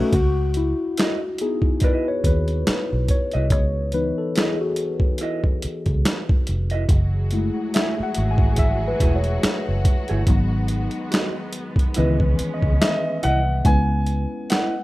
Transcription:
0.00 0.15 A3 loud
0.00 0.15 C#4 loud
0.00 0.15 D#4 medium
0.00 0.14 F#4 medium
0.00 0.15 B4 loud
0.13 0.73 C#2 medium
0.13 0.57 F#4 medium
0.13 kick loud
0.13 closed hi-hat medium
0.54 1.40 E4 medium
0.54 closed hi-hat medium
0.97 1.17 E4 medium
0.97 1.18 B4 medium
0.97 1.18 D#5 medium
0.97 finger snap medium
0.97 snare loud
0.97 closed hi-hat medium
1.38 3.93 B3 soft
1.38 3.93 D#4 medium
1.38 4.74 E4 medium
1.38 1.84 G#4 medium
1.38 closed hi-hat medium
1.62 kick medium
1.80 2.05 E4 medium
1.80 2.06 B4 medium
1.80 2.08 B4 loud
1.80 kick loud
1.80 closed hi-hat medium
1.84 2.06 D#5 medium
2.08 2.24 C#5 loud
2.24 2.63 D#2 medium
2.24 2.65 B4 medium
2.24 kick medium
2.24 closed hi-hat medium
2.48 closed hi-hat soft
2.67 finger snap medium
2.67 muted fingered electric bass stroke soft
2.67 snare loud
2.67 closed hi-hat medium
2.93 3.08 B1 medium
3.08 3.21 C#5 medium
3.08 kick medium
3.08 closed hi-hat medium
3.31 3.52 C2 medium
3.31 3.46 E4 soft
3.31 3.45 B4 medium
3.31 3.45 D#5 medium
3.31 3.52 D#5 medium
3.31 closed hi-hat soft
3.50 4.11 C#2 loud
3.50 3.71 C#5 medium
3.50 kick loud
3.50 closed hi-hat medium
3.92 5.16 E3 medium
3.92 5.16 B3 soft
3.92 5.17 D#4 medium
3.92 4.18 B4 medium
3.92 closed hi-hat medium
4.18 4.36 A4 medium
4.36 4.56 E4 medium
4.36 4.61 G#4 medium
4.36 4.56 B4 medium
4.36 4.56 D#5 medium
4.36 finger snap medium
4.36 snare loud
4.36 closed hi-hat medium
4.61 4.79 F#4 medium
4.76 closed hi-hat medium
5.00 kick medium
5.18 5.40 E4 medium
5.18 5.40 B4 medium
5.18 closed hi-hat medium
5.23 5.41 D#5 medium
5.44 kick medium
5.62 muted fingered electric bass stroke soft
5.62 closed hi-hat medium
5.86 6.03 C#2 medium
5.86 kick medium
5.86 closed hi-hat soft
6.05 finger snap loud
6.05 snare loud
6.05 closed hi-hat medium
6.29 kick loud
6.47 6.86 F1 medium
6.47 closed hi-hat medium
6.70 6.84 E4 medium
6.70 6.83 B4 medium
6.70 6.83 D#5 medium
6.70 closed hi-hat soft
6.89 7.49 F#1 loud
6.89 10.24 E3 medium
6.89 10.24 F#3 medium
6.89 11.92 F#4 medium
6.89 10.23 G#4 medium
6.89 kick loud
6.89 closed hi-hat medium
7.31 7.90 G#3 medium
7.31 7.90 A3 medium
7.31 7.91 E4 medium
7.31 closed hi-hat medium
7.74 7.94 A3 medium
7.74 7.94 E4 medium
7.74 7.95 G#4 medium
7.74 8.03 E5 loud
7.74 finger snap loud
7.74 snare loud
7.74 closed hi-hat medium
8.00 8.31 F#5 medium
8.00 muted fingered electric bass stroke soft
8.14 8.93 G#1 medium
8.14 closed hi-hat medium
8.31 8.59 G#5 loud
8.38 kick loud
8.56 8.87 E5 loud
8.56 kick loud
8.56 closed hi-hat medium
8.88 9.16 B4 medium
9.00 9.39 E1 loud
9.00 9.16 A3 medium
9.00 9.16 E4 medium
9.00 9.17 G#4 medium
9.00 kick medium
9.00 closed hi-hat medium
9.16 9.95 C#5 medium
9.24 closed hi-hat soft
9.43 finger snap medium
9.43 muted fingered electric bass stroke soft
9.43 snare loud
9.43 closed hi-hat medium
9.69 9.84 F#1 medium
9.85 kick loud
9.85 closed hi-hat medium
10.08 10.26 G1 medium
10.08 10.22 A3 medium
10.08 10.21 E4 medium
10.08 10.21 G#4 medium
10.08 closed hi-hat soft
10.27 10.87 G#1 loud
10.27 11.94 D#3 medium
10.27 11.93 F#3 medium
10.27 11.94 G#3 medium
10.27 13.62 B3 medium
10.27 11.93 B3 medium
10.27 11.93 D#4 medium
10.27 kick loud
10.27 closed hi-hat medium
10.68 closed hi-hat medium
10.91 closed hi-hat soft
11.11 11.31 F#4 medium
11.11 11.32 B4 medium
11.11 11.32 D#5 medium
11.11 finger snap medium
11.11 snare loud
11.11 closed hi-hat medium
11.53 closed hi-hat medium
11.76 kick loud
11.76 closed hi-hat soft
11.94 12.35 C#2 loud
11.94 13.20 D#3 medium
11.94 13.19 E3 medium
11.94 13.63 G#3 medium
11.94 13.19 B3 medium
11.94 13.63 C#4 medium
11.94 12.16 E4 medium
11.94 12.16 B4 medium
11.94 12.17 D#5 medium
11.94 closed hi-hat medium
11.98 12.55 B4 medium
12.20 kick medium
12.39 muted fingered electric bass stroke soft
12.39 closed hi-hat medium
12.54 12.82 D#5 medium
12.62 12.79 C#2 medium
12.62 kick medium
12.81 13.25 D#5 medium
12.81 13.61 E5 loud
12.81 finger snap medium
12.81 snare loud
12.81 closed hi-hat medium
13.23 13.62 C2 medium
13.23 13.38 E4 medium
13.23 13.39 B4 medium
13.23 13.39 D#5 medium
13.23 13.67 F#5 medium
13.23 closed hi-hat medium
13.65 14.25 C#2 loud
13.65 14.84 G#3 medium
13.65 14.84 B3 medium
13.65 14.84 C#4 soft
13.65 14.84 E4 medium
13.65 14.84 B4 medium
13.65 14.52 G#5 medium
13.65 kick loud
13.65 closed hi-hat medium
14.06 closed hi-hat soft
14.50 14.73 E4 medium
14.50 14.73 B4 medium
14.50 14.73 D#5 medium
14.50 14.84 F#5 medium
14.50 finger snap medium
14.50 snare loud
14.50 closed hi-hat medium

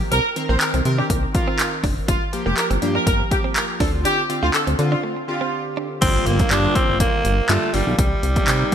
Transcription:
0.00 0.12 F3 medium
0.00 0.12 A#3 medium
0.00 0.12 G4 medium
0.12 0.20 C2 loud
0.12 0.21 C4 medium
0.12 0.28 A#4 loud
0.12 closed hi-hat loud
0.36 0.47 D#3 medium
0.36 0.47 C4 medium
0.36 0.47 A#4 medium
0.36 muted clean electric guitar stroke soft
0.36 closed hi-hat medium
0.49 0.57 A#1 medium
0.49 0.78 D#3 medium
0.49 0.58 A#3 medium
0.49 0.79 C4 medium
0.49 0.79 A#4 medium
0.49 0.57 C5 medium
0.61 0.70 A#4 medium
0.61 clap loud
0.61 closed hi-hat medium
0.74 0.82 C2 loud
0.74 0.83 C4 medium
0.74 closed hi-hat medium
0.85 1.02 C3 loud
0.85 1.25 D#3 medium
0.85 1.25 C4 medium
0.85 1.26 A#4 loud
0.85 muted clean electric guitar stroke soft
0.85 closed hi-hat medium
0.98 1.07 D4 medium
0.98 1.06 G4 medium
1.10 1.26 C2 medium
1.10 1.20 A#3 medium
1.10 kick loud
1.10 closed hi-hat loud
1.23 muted clean electric guitar stroke soft
1.34 2.08 D#3 medium
1.34 2.08 C4 medium
1.34 1.70 F4 medium
1.34 2.09 A#4 medium
1.34 kick loud
1.34 closed hi-hat medium
1.48 1.56 C4 medium
1.59 clap loud
1.59 closed hi-hat medium
1.84 2.00 F#1 medium
1.84 1.94 D4 medium
1.84 kick loud
1.84 open hi-hat medium
2.08 2.17 G1 loud
2.08 2.18 G3 medium
2.08 2.25 F4 loud
2.08 kick loud
2.08 closed hi-hat loud
2.33 2.43 F3 medium
2.33 2.43 A#3 medium
2.33 2.44 G4 medium
2.33 muted clean electric guitar stroke soft
2.33 closed hi-hat medium
2.46 2.54 F1 loud
2.46 2.75 F3 medium
2.46 2.55 A#3 medium
2.46 2.75 A#3 medium
2.46 2.54 G4 medium
2.46 2.75 G4 medium
2.57 2.66 A#4 medium
2.57 clap loud
2.57 closed hi-hat medium
2.71 2.78 G1 loud
2.71 2.79 C4 medium
2.71 closed hi-hat medium
2.82 2.98 G2 loud
2.82 3.22 F3 medium
2.82 3.22 A#3 medium
2.82 3.22 G4 loud
2.82 muted clean electric guitar stroke medium
2.82 closed hi-hat medium
2.95 3.04 D4 medium
2.95 3.03 A#4 medium
3.07 3.23 G1 loud
3.07 3.17 A#3 medium
3.07 3.23 A#4 medium
3.07 kick loud
3.07 closed hi-hat loud
3.20 muted clean electric guitar stroke soft
3.31 3.80 F3 medium
3.31 3.81 A#3 medium
3.31 3.40 G4 medium
3.31 3.81 G4 medium
3.31 kick loud
3.31 closed hi-hat medium
3.44 3.53 C4 medium
3.56 3.65 A#4 medium
3.56 clap loud
3.56 closed hi-hat medium
3.80 4.05 D2 loud
3.80 4.20 D3 medium
3.80 4.21 C4 medium
3.80 3.90 D4 medium
3.80 4.21 F4 medium
3.80 3.89 A4 medium
3.80 kick loud
3.80 open hi-hat medium
4.05 4.15 D4 medium
4.05 4.21 G4 loud
4.05 closed hi-hat loud
4.29 4.40 D3 medium
4.29 4.40 C4 medium
4.29 4.40 F4 medium
4.29 muted clean electric guitar stroke soft
4.29 closed hi-hat medium
4.43 4.50 D2 medium
4.43 4.72 D3 medium
4.43 4.72 C4 medium
4.43 4.51 F4 medium
4.43 4.50 F4 medium
4.43 4.72 F4 medium
4.54 4.63 A4 medium
4.54 clap loud
4.54 closed hi-hat medium
4.67 4.75 D2 medium
4.67 4.76 C4 medium
4.67 closed hi-hat medium
4.79 5.19 D3 medium
4.79 4.95 D3 loud
4.79 5.19 C4 medium
4.79 5.19 F4 medium
4.79 muted clean electric guitar stroke soft
4.79 closed hi-hat medium
4.92 5.01 D4 medium
4.92 5.00 F4 medium
5.04 5.13 A3 medium
5.17 muted clean electric guitar stroke soft
5.28 6.00 D3 medium
5.28 6.02 C4 medium
5.28 5.64 F4 medium
5.28 6.02 G4 medium
5.41 5.50 C4 medium
5.77 5.87 D4 medium
6.02 6.18 G1 loud
6.02 6.42 D3 medium
6.02 6.42 G3 medium
6.02 6.42 A#3 medium
6.02 6.28 C4 loud
6.02 6.42 F4 loud
6.02 kick loud
6.02 closed hi-hat loud
6.02 crash loud
6.02 impact medium
6.26 6.43 G1 loud
6.26 6.53 A#3 loud
6.26 closed hi-hat medium
6.39 kick loud
6.39 closed hi-hat medium
6.51 6.67 G2 loud
6.51 7.30 D3 medium
6.51 7.30 G3 medium
6.51 7.30 A#3 medium
6.51 6.77 D4 loud
6.51 7.30 F4 loud
6.51 clap loud
6.51 closed hi-hat medium
6.75 7.00 C4 loud
6.75 kick loud
6.75 closed hi-hat medium
6.89 7.05 G1 medium
7.00 7.51 A#3 loud
7.00 kick loud
7.00 closed hi-hat loud
7.25 7.41 G1 loud
7.25 closed hi-hat medium
7.49 7.58 G2 loud
7.49 7.69 D3 medium
7.49 7.69 G3 medium
7.49 7.75 A3 loud
7.49 7.69 A#3 medium
7.49 7.69 F4 medium
7.49 clap loud
7.49 closed hi-hat loud
7.74 7.83 G1 medium
7.74 7.98 D3 medium
7.74 7.98 G3 medium
7.74 7.99 A#3 medium
7.74 7.99 F4 medium
7.74 open hi-hat medium
7.87 7.95 B1 loud
7.99 8.15 C2 loud
7.99 8.75 G3 loud
7.99 kick loud
7.99 closed hi-hat loud
8.23 8.39 C2 loud
8.23 closed hi-hat medium
8.36 8.75 C3 medium
8.36 8.75 G3 medium
8.36 8.75 A#3 medium
8.36 8.75 D#4 medium
8.36 kick loud
8.36 closed hi-hat medium
8.48 8.64 C3 loud
8.48 clap loud
8.48 closed hi-hat medium

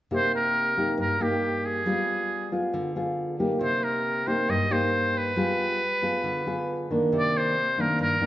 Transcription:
0.11 0.96 C3 medium
0.11 0.73 A#3 soft
0.11 0.73 D#4 soft
0.11 0.73 G4 soft
0.15 0.33 C5 medium
0.35 0.96 A#4 medium
0.77 1.17 A#3 soft
0.77 1.17 D#4 medium
0.77 1.17 G4 medium
0.98 1.83 G2 medium
0.98 1.23 A#4 medium
1.20 1.82 A#3 medium
1.20 1.82 D#4 medium
1.20 1.83 G4 medium
1.20 1.67 G4 medium
1.66 2.52 G#4 medium
1.86 2.71 G3 medium
1.86 2.48 B3 soft
1.86 2.49 F4 soft
1.86 2.49 G#4 medium
2.52 2.92 B3 soft
2.52 2.92 F4 medium
2.52 2.93 G#4 medium
2.73 3.59 D3 medium
2.96 3.36 B3 medium
2.96 3.36 F4 medium
2.96 3.36 G#4 medium
3.40 4.23 A#3 medium
3.40 4.24 D#4 medium
3.40 4.24 G4 medium
3.61 4.46 C3 medium
3.61 3.85 C5 medium
3.84 4.29 A#4 medium
4.27 4.67 A#3 medium
4.27 4.67 D#4 medium
4.27 4.67 G4 medium
4.27 4.52 C5 medium
4.48 5.34 G2 medium
4.48 4.74 D#5 medium
4.70 5.33 A#3 medium
4.70 5.33 D#4 medium
4.70 5.33 G4 medium
4.70 5.19 C5 medium
5.18 6.91 B4 medium
5.36 6.22 G3 medium
5.36 5.80 B3 soft
5.36 5.80 F4 medium
5.36 5.80 G#4 medium
6.02 6.42 B3 medium
6.02 6.43 F4 medium
6.02 6.43 G#4 medium
6.24 7.09 D3 medium
6.46 6.86 B3 medium
6.46 6.87 F4 medium
6.46 6.87 G#4 medium
6.90 7.54 D#3 medium
6.90 7.54 A#3 medium
6.90 7.54 D4 medium
7.12 7.97 C3 medium
7.12 7.39 D5 medium
7.37 7.82 C5 medium
7.78 8.17 D#3 medium
7.78 8.18 A#3 medium
7.78 8.18 D4 medium
7.78 8.01 A#4 medium
7.99 8.26 G2 medium
7.99 8.26 A#4 medium
8.21 8.26 D#3 medium
8.21 8.26 A#3 medium
8.21 8.26 D4 medium

